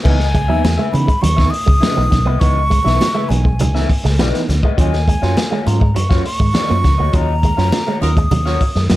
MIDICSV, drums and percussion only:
0, 0, Header, 1, 2, 480
1, 0, Start_track
1, 0, Tempo, 589971
1, 42, Time_signature, 4, 2, 24, 8
1, 7293, End_track
2, 0, Start_track
2, 0, Title_t, "Drums"
2, 41, Note_on_c, 9, 36, 127
2, 43, Note_on_c, 9, 49, 102
2, 44, Note_on_c, 9, 62, 50
2, 123, Note_off_c, 9, 36, 0
2, 124, Note_off_c, 9, 49, 0
2, 125, Note_off_c, 9, 62, 0
2, 162, Note_on_c, 9, 38, 39
2, 243, Note_off_c, 9, 38, 0
2, 282, Note_on_c, 9, 36, 102
2, 282, Note_on_c, 9, 62, 35
2, 283, Note_on_c, 9, 42, 80
2, 363, Note_off_c, 9, 36, 0
2, 363, Note_off_c, 9, 62, 0
2, 365, Note_off_c, 9, 42, 0
2, 525, Note_on_c, 9, 63, 71
2, 527, Note_on_c, 9, 38, 105
2, 529, Note_on_c, 9, 42, 86
2, 607, Note_off_c, 9, 63, 0
2, 608, Note_off_c, 9, 38, 0
2, 611, Note_off_c, 9, 42, 0
2, 762, Note_on_c, 9, 62, 59
2, 769, Note_on_c, 9, 42, 72
2, 843, Note_off_c, 9, 62, 0
2, 851, Note_off_c, 9, 42, 0
2, 882, Note_on_c, 9, 36, 83
2, 885, Note_on_c, 9, 42, 50
2, 963, Note_off_c, 9, 36, 0
2, 966, Note_off_c, 9, 42, 0
2, 1006, Note_on_c, 9, 42, 98
2, 1006, Note_on_c, 9, 62, 61
2, 1087, Note_off_c, 9, 42, 0
2, 1088, Note_off_c, 9, 62, 0
2, 1125, Note_on_c, 9, 36, 101
2, 1128, Note_on_c, 9, 38, 38
2, 1206, Note_off_c, 9, 36, 0
2, 1210, Note_off_c, 9, 38, 0
2, 1250, Note_on_c, 9, 46, 69
2, 1331, Note_off_c, 9, 46, 0
2, 1364, Note_on_c, 9, 36, 102
2, 1446, Note_off_c, 9, 36, 0
2, 1486, Note_on_c, 9, 63, 79
2, 1489, Note_on_c, 9, 42, 103
2, 1490, Note_on_c, 9, 38, 127
2, 1567, Note_off_c, 9, 63, 0
2, 1571, Note_off_c, 9, 38, 0
2, 1571, Note_off_c, 9, 42, 0
2, 1725, Note_on_c, 9, 38, 35
2, 1726, Note_on_c, 9, 36, 87
2, 1726, Note_on_c, 9, 63, 76
2, 1727, Note_on_c, 9, 42, 70
2, 1807, Note_off_c, 9, 36, 0
2, 1807, Note_off_c, 9, 38, 0
2, 1807, Note_off_c, 9, 63, 0
2, 1808, Note_off_c, 9, 42, 0
2, 1962, Note_on_c, 9, 42, 90
2, 1964, Note_on_c, 9, 36, 123
2, 1970, Note_on_c, 9, 62, 55
2, 2043, Note_off_c, 9, 42, 0
2, 2045, Note_off_c, 9, 36, 0
2, 2051, Note_off_c, 9, 62, 0
2, 2207, Note_on_c, 9, 36, 94
2, 2210, Note_on_c, 9, 42, 90
2, 2288, Note_off_c, 9, 36, 0
2, 2292, Note_off_c, 9, 42, 0
2, 2334, Note_on_c, 9, 38, 36
2, 2415, Note_off_c, 9, 38, 0
2, 2448, Note_on_c, 9, 63, 75
2, 2454, Note_on_c, 9, 38, 113
2, 2456, Note_on_c, 9, 42, 86
2, 2530, Note_off_c, 9, 63, 0
2, 2536, Note_off_c, 9, 38, 0
2, 2538, Note_off_c, 9, 42, 0
2, 2688, Note_on_c, 9, 62, 59
2, 2695, Note_on_c, 9, 42, 74
2, 2769, Note_off_c, 9, 62, 0
2, 2777, Note_off_c, 9, 42, 0
2, 2807, Note_on_c, 9, 36, 88
2, 2888, Note_off_c, 9, 36, 0
2, 2923, Note_on_c, 9, 42, 97
2, 2932, Note_on_c, 9, 62, 69
2, 2932, Note_on_c, 9, 64, 90
2, 3004, Note_off_c, 9, 42, 0
2, 3013, Note_off_c, 9, 62, 0
2, 3013, Note_off_c, 9, 64, 0
2, 3052, Note_on_c, 9, 38, 39
2, 3134, Note_off_c, 9, 38, 0
2, 3169, Note_on_c, 9, 36, 93
2, 3171, Note_on_c, 9, 46, 74
2, 3250, Note_off_c, 9, 36, 0
2, 3252, Note_off_c, 9, 46, 0
2, 3295, Note_on_c, 9, 38, 41
2, 3376, Note_off_c, 9, 38, 0
2, 3410, Note_on_c, 9, 63, 84
2, 3412, Note_on_c, 9, 38, 127
2, 3412, Note_on_c, 9, 42, 112
2, 3491, Note_off_c, 9, 63, 0
2, 3493, Note_off_c, 9, 42, 0
2, 3494, Note_off_c, 9, 38, 0
2, 3539, Note_on_c, 9, 42, 58
2, 3542, Note_on_c, 9, 38, 33
2, 3620, Note_off_c, 9, 42, 0
2, 3623, Note_off_c, 9, 38, 0
2, 3652, Note_on_c, 9, 63, 69
2, 3657, Note_on_c, 9, 38, 39
2, 3659, Note_on_c, 9, 42, 69
2, 3733, Note_off_c, 9, 63, 0
2, 3738, Note_off_c, 9, 38, 0
2, 3740, Note_off_c, 9, 42, 0
2, 3769, Note_on_c, 9, 36, 98
2, 3850, Note_off_c, 9, 36, 0
2, 3889, Note_on_c, 9, 36, 127
2, 3893, Note_on_c, 9, 42, 99
2, 3894, Note_on_c, 9, 62, 52
2, 3971, Note_off_c, 9, 36, 0
2, 3974, Note_off_c, 9, 42, 0
2, 3975, Note_off_c, 9, 62, 0
2, 4013, Note_on_c, 9, 38, 36
2, 4094, Note_off_c, 9, 38, 0
2, 4131, Note_on_c, 9, 36, 94
2, 4138, Note_on_c, 9, 42, 85
2, 4212, Note_off_c, 9, 36, 0
2, 4220, Note_off_c, 9, 42, 0
2, 4252, Note_on_c, 9, 38, 34
2, 4333, Note_off_c, 9, 38, 0
2, 4368, Note_on_c, 9, 63, 75
2, 4372, Note_on_c, 9, 38, 118
2, 4374, Note_on_c, 9, 42, 78
2, 4449, Note_off_c, 9, 63, 0
2, 4454, Note_off_c, 9, 38, 0
2, 4456, Note_off_c, 9, 42, 0
2, 4610, Note_on_c, 9, 62, 56
2, 4617, Note_on_c, 9, 42, 78
2, 4691, Note_off_c, 9, 62, 0
2, 4698, Note_off_c, 9, 42, 0
2, 4729, Note_on_c, 9, 36, 97
2, 4811, Note_off_c, 9, 36, 0
2, 4848, Note_on_c, 9, 42, 87
2, 4850, Note_on_c, 9, 62, 64
2, 4930, Note_off_c, 9, 42, 0
2, 4932, Note_off_c, 9, 62, 0
2, 4967, Note_on_c, 9, 38, 44
2, 4968, Note_on_c, 9, 36, 99
2, 5048, Note_off_c, 9, 38, 0
2, 5049, Note_off_c, 9, 36, 0
2, 5088, Note_on_c, 9, 46, 76
2, 5170, Note_off_c, 9, 46, 0
2, 5207, Note_on_c, 9, 36, 102
2, 5288, Note_off_c, 9, 36, 0
2, 5326, Note_on_c, 9, 42, 109
2, 5327, Note_on_c, 9, 38, 127
2, 5329, Note_on_c, 9, 63, 84
2, 5408, Note_off_c, 9, 38, 0
2, 5408, Note_off_c, 9, 42, 0
2, 5410, Note_off_c, 9, 63, 0
2, 5565, Note_on_c, 9, 63, 75
2, 5569, Note_on_c, 9, 36, 98
2, 5571, Note_on_c, 9, 38, 36
2, 5573, Note_on_c, 9, 42, 73
2, 5647, Note_off_c, 9, 63, 0
2, 5650, Note_off_c, 9, 36, 0
2, 5653, Note_off_c, 9, 38, 0
2, 5654, Note_off_c, 9, 42, 0
2, 5802, Note_on_c, 9, 42, 89
2, 5807, Note_on_c, 9, 36, 127
2, 5807, Note_on_c, 9, 62, 56
2, 5884, Note_off_c, 9, 42, 0
2, 5888, Note_off_c, 9, 36, 0
2, 5888, Note_off_c, 9, 62, 0
2, 6047, Note_on_c, 9, 36, 85
2, 6048, Note_on_c, 9, 42, 80
2, 6128, Note_off_c, 9, 36, 0
2, 6130, Note_off_c, 9, 42, 0
2, 6169, Note_on_c, 9, 38, 34
2, 6251, Note_off_c, 9, 38, 0
2, 6284, Note_on_c, 9, 63, 82
2, 6286, Note_on_c, 9, 38, 119
2, 6288, Note_on_c, 9, 42, 83
2, 6365, Note_off_c, 9, 63, 0
2, 6367, Note_off_c, 9, 38, 0
2, 6369, Note_off_c, 9, 42, 0
2, 6524, Note_on_c, 9, 62, 62
2, 6533, Note_on_c, 9, 42, 73
2, 6605, Note_off_c, 9, 62, 0
2, 6614, Note_off_c, 9, 42, 0
2, 6645, Note_on_c, 9, 36, 92
2, 6645, Note_on_c, 9, 42, 54
2, 6726, Note_off_c, 9, 36, 0
2, 6727, Note_off_c, 9, 42, 0
2, 6763, Note_on_c, 9, 62, 69
2, 6763, Note_on_c, 9, 64, 92
2, 6766, Note_on_c, 9, 42, 82
2, 6844, Note_off_c, 9, 62, 0
2, 6844, Note_off_c, 9, 64, 0
2, 6847, Note_off_c, 9, 42, 0
2, 6884, Note_on_c, 9, 38, 38
2, 6965, Note_off_c, 9, 38, 0
2, 7002, Note_on_c, 9, 46, 68
2, 7004, Note_on_c, 9, 36, 94
2, 7083, Note_off_c, 9, 46, 0
2, 7085, Note_off_c, 9, 36, 0
2, 7121, Note_on_c, 9, 38, 40
2, 7202, Note_off_c, 9, 38, 0
2, 7238, Note_on_c, 9, 38, 127
2, 7238, Note_on_c, 9, 42, 103
2, 7242, Note_on_c, 9, 63, 76
2, 7293, Note_off_c, 9, 38, 0
2, 7293, Note_off_c, 9, 42, 0
2, 7293, Note_off_c, 9, 63, 0
2, 7293, End_track
0, 0, End_of_file